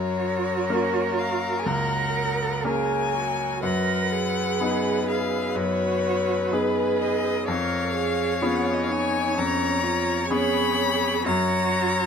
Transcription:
0.00 0.67 F#2 medium
0.00 1.68 F#4 medium
0.00 3.59 A#4 medium
0.00 1.20 C#5 medium
0.70 1.62 A#3 soft
0.70 1.62 C#4 soft
0.70 1.63 A#4 soft
1.18 1.60 F5 medium
1.59 1.67 G#5 soft
1.66 2.61 C#2 medium
1.66 2.67 A#4 medium
1.66 2.66 F#5 medium
2.64 3.59 A#3 soft
2.64 3.59 C#4 soft
2.64 3.16 G#4 medium
2.64 3.59 A#4 soft
2.64 3.62 G#5 medium
3.15 3.63 F#4 medium
3.63 4.57 F#2 medium
3.63 4.14 A#4 medium
3.63 7.45 B4 soft
3.63 5.06 F#5 medium
4.13 5.59 G#4 medium
4.60 5.52 B3 soft
4.60 5.53 D#4 soft
4.60 5.53 G#4 soft
5.09 5.57 F5 medium
5.55 6.50 F#2 medium
5.55 6.54 F#4 medium
5.55 6.55 C#5 medium
6.52 7.44 B3 soft
6.52 7.44 D#4 soft
6.52 7.44 G#4 soft
6.52 7.49 G#4 medium
6.52 7.03 B4 medium
7.01 7.47 D#5 medium
7.47 8.40 F2 medium
7.47 7.93 A#4 medium
7.47 11.22 C#5 medium
7.47 8.57 F5 medium
7.94 8.43 G#4 medium
8.41 9.33 B3 soft
8.41 9.33 C#4 soft
8.41 8.91 F4 medium
8.41 9.33 G#4 soft
8.55 8.66 F#5 medium
8.65 8.75 F5 medium
8.74 8.85 D#5 medium
8.84 8.93 F5 medium
8.89 9.36 D#4 medium
8.89 9.40 G#5 medium
9.35 10.28 F2 medium
9.35 9.85 C#4 medium
9.35 10.27 A#5 medium
9.83 10.28 F4 medium
10.25 11.26 G#4 medium
10.25 10.32 C#6 medium
10.30 11.22 B3 soft
10.30 11.22 C#4 soft
10.30 11.22 G#4 medium
10.30 11.26 B5 loud
11.24 12.06 F#2 medium
11.24 12.06 F#4 medium
11.24 12.06 C#5 medium
11.24 12.06 A#5 loud

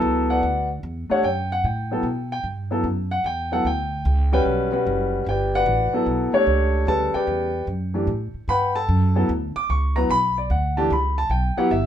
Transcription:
0.00 0.41 C#2 medium
0.00 0.40 F#3 medium
0.00 0.40 B3 medium
0.00 0.40 E4 medium
0.00 0.40 A4 loud
0.00 0.26 E5 medium
0.30 0.68 F#4 medium
0.30 0.68 B4 medium
0.30 0.67 D5 medium
0.30 0.67 F#5 medium
0.43 0.82 D2 medium
0.83 1.08 E2 medium
1.10 1.22 A3 medium
1.10 1.22 D4 medium
1.10 1.22 G4 medium
1.10 1.23 C#5 medium
1.10 1.23 F#5 medium
1.10 muted upright bass stroke soft
1.23 1.62 F#2 medium
1.23 1.50 G5 medium
1.52 1.64 F#5 loud
1.64 2.02 A2 medium
1.64 2.27 G5 medium
1.91 2.03 F#3 medium
1.91 2.03 B3 medium
1.91 2.04 E4 medium
1.91 2.04 A4 medium
2.03 2.42 B2 medium
2.32 2.45 G5 loud
2.44 2.83 G2 medium
2.71 2.83 F#3 medium
2.71 2.83 B3 medium
2.71 2.83 E4 medium
2.71 2.84 A4 medium
2.84 3.23 F#2 medium
3.11 3.24 F#5 loud
3.24 3.64 E2 medium
3.24 3.51 G5 loud
3.52 3.64 F#3 medium
3.52 3.64 B3 medium
3.52 3.64 E4 medium
3.52 3.64 A4 medium
3.52 3.65 F#5 medium
3.65 4.04 D2 medium
3.65 4.29 G5 medium
4.05 4.44 C#2 loud
4.32 4.70 G3 medium
4.32 4.70 C#4 medium
4.32 4.70 F#4 medium
4.32 4.70 B4 loud
4.32 4.41 G5 loud
4.46 4.85 B1 medium
4.72 5.23 G3 medium
4.72 5.24 C#4 medium
4.72 5.24 F#4 medium
4.72 5.24 B4 medium
4.87 5.25 F#1 medium
5.26 5.65 G1 medium
5.26 5.54 G4 medium
5.26 5.54 B4 medium
5.26 5.54 D5 medium
5.26 5.53 G5 medium
5.55 6.04 F#4 medium
5.55 6.04 B4 medium
5.55 6.04 D5 medium
5.55 6.04 F#5 loud
5.66 5.91 A1 loud
5.93 6.31 F#3 medium
5.93 6.31 B3 medium
5.93 6.31 E4 medium
5.93 6.32 A4 medium
5.93 muted upright bass stroke soft
6.06 6.31 B1 medium
6.33 6.84 A3 medium
6.33 6.85 D4 medium
6.33 6.85 G4 medium
6.33 6.85 C#5 medium
6.33 muted upright bass stroke soft
6.47 6.86 C#2 medium
6.87 7.12 D2 medium
6.87 7.49 C#3 medium
6.87 7.49 G3 medium
6.87 7.14 G4 medium
6.87 7.14 A4 medium
6.87 7.13 B4 medium
6.87 7.14 A5 loud
7.14 7.65 G4 medium
7.14 7.64 B4 medium
7.14 7.65 D5 medium
7.14 7.64 G5 medium
7.14 muted upright bass stroke soft
7.27 7.66 E2 medium
7.67 8.07 F#2 medium
7.94 8.06 E3 medium
7.94 8.07 A3 medium
7.94 8.07 D4 medium
7.94 8.07 G4 medium
8.07 8.33 A2 medium
8.34 muted upright bass stroke soft
8.48 8.87 G2 medium
8.48 8.75 B4 medium
8.48 8.75 F#5 medium
8.48 8.75 G5 medium
8.48 8.75 B5 loud
8.75 9.15 A4 medium
8.75 9.25 A5 loud
8.89 9.28 F#2 loud
9.15 9.27 F#3 medium
9.15 9.28 B3 medium
9.15 9.28 E4 medium
9.15 9.28 A4 medium
9.29 9.54 D2 loud
9.56 9.69 D6 loud
9.56 muted upright bass stroke soft
9.69 10.08 C#2 medium
9.69 9.95 C#6 medium
9.96 10.08 F#3 medium
9.96 10.08 B3 medium
9.96 10.08 E4 medium
9.96 10.09 B4 medium
9.96 10.09 A#5 medium
10.10 10.48 B1 medium
10.10 10.36 B5 loud
10.38 10.50 D5 medium
10.50 10.89 D2 loud
10.50 10.76 F#5 medium
10.77 10.89 E3 medium
10.77 10.89 A3 medium
10.77 10.89 D4 medium
10.77 10.89 G4 medium
10.77 10.90 A5 medium
10.90 11.29 C#2 medium
10.90 11.17 B5 medium
11.18 11.30 A5 loud
11.30 11.55 B1 medium
11.30 11.56 G5 medium
11.57 11.69 F#3 medium
11.57 11.69 B3 medium
11.57 11.70 E4 medium
11.57 11.70 G4 medium
11.57 11.70 F#5 loud
11.57 muted upright bass stroke soft
11.71 11.86 G1 medium
11.71 11.86 E5 medium

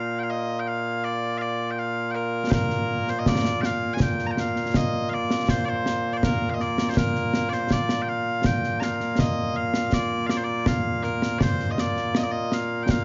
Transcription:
0.00 13.04 A#2 medium
0.00 13.04 A#3 medium
0.00 13.04 F4 medium
0.00 0.19 F5 medium
0.19 0.23 G5 medium
0.23 0.30 F5 medium
0.30 0.60 D#5 medium
0.60 0.67 G5 medium
0.67 1.04 F5 medium
1.04 1.38 D5 medium
1.38 1.71 D5 medium
1.38 1.41 F5 medium
1.71 1.79 G5 medium
1.79 2.11 F5 medium
2.11 2.15 G5 medium
2.15 2.50 A#4 medium
2.50 3.10 A#4 medium
2.50 2.54 C5 medium
2.50 concert bass drum medium
2.50 snare loud
2.70 snare soft
3.07 3.19 C5 medium
3.07 snare soft
3.19 3.28 D#5 medium
3.26 3.61 D5 medium
3.26 concert bass drum medium
3.26 snare medium
3.45 snare medium
3.61 3.65 G5 loud
3.61 snare medium
3.65 3.94 F5 loud
3.94 4.02 G#5 medium
4.00 4.26 G5 loud
4.00 concert bass drum medium
4.00 snare medium
4.19 snare soft
4.26 4.31 A#5 medium
4.31 4.40 G5 medium
4.37 4.77 F5 medium
4.37 snare medium
4.56 snare soft
4.74 5.09 D#5 medium
4.74 concert bass drum medium
4.74 snare medium
5.09 5.14 F5 medium
5.14 5.50 D5 medium
5.31 snare medium
5.48 5.65 C5 medium
5.48 concert bass drum soft
5.48 snare medium
5.65 6.13 C5 loud
5.65 5.69 D5 loud
5.86 snare medium
6.13 6.24 C5 medium
6.13 6.17 D5 medium
6.23 6.50 A#4 medium
6.23 concert bass drum medium
6.23 snare medium
6.50 6.54 F5 medium
6.54 6.61 D#5 medium
6.60 6.89 D5 medium
6.60 snare soft
6.78 snare medium
6.89 6.97 C5 medium
6.97 7.49 A#4 medium
6.97 concert bass drum medium
6.97 snare loud
7.15 snare soft
7.34 snare medium
7.49 7.72 C5 medium
7.49 7.53 D5 medium
7.49 snare soft
7.70 8.02 D5 medium
7.70 concert bass drum soft
7.70 snare medium
7.89 snare medium
8.02 8.09 G5 medium
8.09 8.46 F5 loud
8.44 8.80 G5 medium
8.44 concert bass drum medium
8.44 snare medium
8.64 snare soft
8.80 9.20 F5 medium
8.80 8.83 A#5 medium
8.80 snare medium
9.00 snare soft
9.19 9.56 D#5 medium
9.19 concert bass drum medium
9.19 snare medium
9.56 9.94 F5 medium
9.74 snare medium
9.92 10.26 D5 medium
9.92 concert bass drum soft
9.92 snare medium
10.26 10.37 D5 medium
10.26 10.30 F5 medium
10.26 snare medium
10.37 10.44 C5 medium
10.44 10.67 D5 medium
10.66 11.03 F5 medium
10.66 concert bass drum medium
10.66 snare loud
11.03 11.39 A#4 medium
11.03 snare soft
11.22 snare medium
11.39 11.71 C5 medium
11.39 11.43 D5 medium
11.39 concert bass drum medium
11.39 snare loud
11.59 snare soft
11.71 11.79 D#5 medium
11.78 12.17 D5 medium
11.78 snare medium
11.96 snare soft
12.15 12.23 D#5 medium
12.15 snare medium
12.23 12.31 D5 medium
12.31 12.54 D#5 medium
12.52 12.83 F5 medium
12.52 snare medium
12.83 12.91 G5 medium
12.89 13.04 F5 medium
12.89 concert bass drum medium
12.89 snare loud

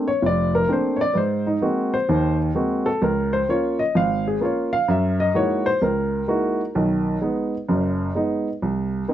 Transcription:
0.08 0.23 C#5 medium
0.22 0.63 F1 medium
0.22 0.54 D5 medium
0.55 0.70 A#4 medium
0.68 1.01 A3 medium
0.68 1.01 A#3 soft
0.68 1.01 C4 soft
0.68 1.01 D4 medium
0.73 1.00 C5 medium
0.96 0.99 C#5 medium
1.01 1.16 D5 loud
1.13 1.56 G#2 medium
1.13 1.17 B4 soft
1.17 1.46 C5 medium
1.47 1.62 D#4 medium
1.62 1.94 G#3 medium
1.62 1.94 A#3 soft
1.62 1.94 C4 soft
1.62 1.94 F#4 medium
1.94 2.36 C5 medium
2.09 2.49 D#2 medium
2.09 2.49 D#3 medium
2.55 2.87 G#3 medium
2.55 2.87 A#3 soft
2.55 2.87 C4 soft
2.55 2.87 F#4 medium
2.86 3.01 A4 medium
3.02 3.42 C#2 medium
3.02 3.32 A#4 medium
3.33 3.48 C5 medium
3.49 3.81 A#3 medium
3.49 3.81 C#4 medium
3.49 3.81 F4 medium
3.49 3.79 C#5 medium
3.79 3.95 D#5 medium
3.95 4.35 G#1 medium
3.95 4.25 F5 medium
4.28 4.42 G#4 medium
4.41 4.73 A#3 medium
4.41 4.73 C#4 soft
4.41 4.74 F4 medium
4.41 4.73 C#5 medium
4.73 4.88 F5 loud
4.88 5.28 F#2 medium
4.88 5.19 E5 medium
5.20 5.35 D#5 medium
5.34 5.67 G#3 medium
5.34 5.67 A#3 medium
5.34 5.67 D#4 soft
5.34 5.67 E4 medium
5.34 5.67 F#4 medium
5.34 5.65 C#5 medium
5.66 5.81 C5 medium
5.82 6.22 C#2 medium
5.82 7.18 A#4 medium
6.28 6.60 G#3 medium
6.28 6.60 A#3 soft
6.28 6.60 D#4 medium
6.28 6.60 E4 soft
6.28 6.60 F#4 medium
6.75 7.15 B1 medium
6.75 7.15 D#3 medium
7.21 7.53 G#3 medium
7.21 7.54 B3 medium
7.21 7.54 D#4 medium
7.68 8.09 F#1 medium
7.68 8.09 F#2 medium
8.15 8.47 G#3 medium
8.15 8.47 B3 soft
8.15 8.48 D#4 medium
8.62 9.02 C2 medium
9.08 9.14 A#3 medium
9.08 9.14 C4 medium
9.08 9.14 D4 medium
9.08 9.14 D#4 medium

